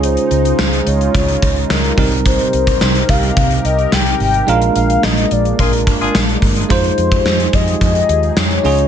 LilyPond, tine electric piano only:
\new Staff \with { instrumentName = "Tine electric piano" } { \time 4/4 \key f \minor \tempo 4 = 108 <aes des' f' aes'>2.~ <aes des' f' aes'>8 <g c' ees' bes'>8~ | <g c' ees' bes'>2.~ <g c' ees' bes'>8 r8 | <aes d' f' bes'>1 | <aes ees' f' c''>2.~ <aes ees' f' c''>8 <aes des' f' aes'>8 | }